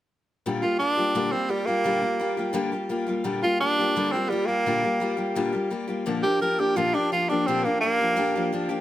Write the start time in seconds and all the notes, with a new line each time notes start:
0.46 A#2 D3 G3 A#3 F4 G4
0.62 G3 A#3 F4 G4
0.79 G3 A#3 D4 F4 G4
0.97 G3 A#3 F4 G4
1.15 A#2 D3 G3 A#3 F4 G4
1.31 G3 A#3 C4 F4 G4
1.49 G3 A#3 F4 G4
1.66 G3 A#3 F4 G4
1.84 A#2 D3 G3 A#3 F4 G4
2.02 G3 A#3 F4 G4
2.20 G3 A#3 F4 G4
2.37 G3 A#3 F4 G4
2.53 A#2 D3 G3 A#3 F4 G4
2.72 G3 A#3 F4 G4
2.89 G3 A#3 F4 G4
3.07 G3 A#3 F4 G4
3.24 A#2 D3 G3 A#3 F4 G4
3.42 G3 A#3 F4 G4
3.60 G3 A#3 D4 F4 G4
3.79 G3 A#3 F4 G4
3.96 A#2 D3 G3 A#3 F4 G4
4.12 A#3 C4 F4 G4
4.16 G3
4.30 G3 A#3 F4 G4
4.46 G3 A#3 F4 G4
4.66 A#2 D3 G3 A#3 F4 G4
4.84 G3 A#3 F4 G4
5.00 G3 A#3 F4 G4
5.17 G3 A#3 F4 G4
5.35 A#2 D3 G3 A#3 F4 G4
5.52 G3 A#3 F4 G4
5.70 G3 A#3 F4 G4
5.88 G3 A#3 F4 G4
6.06 A#2 D3 F3 A#3 D4 G4
6.23 F3 A#3 D4 G4
6.40 F3 A#3 D4 G4 A#4
6.59 F3 A#3 D4 G4
6.76 A#2 D3 F3 A#3 D4 F4 G4
6.94 F3 A#3 D4 G4
7.12 F3 A#3 D4 F4 G4
7.29 F3 A#3 D4 G4
7.47 A#2 D3 F3 A#3 C4 D4 G4
7.64 F3 A#3 D4 G4
7.81 F3 A#3 D4 G4
8.00 F3 A#3 D4 G4
8.16 A#2 D3 F3 A#3 D4 G4
8.35 F3 A#3 D4 G4
8.52 F3 A#3 D4 G4
8.69 F3 A#3 D4 G4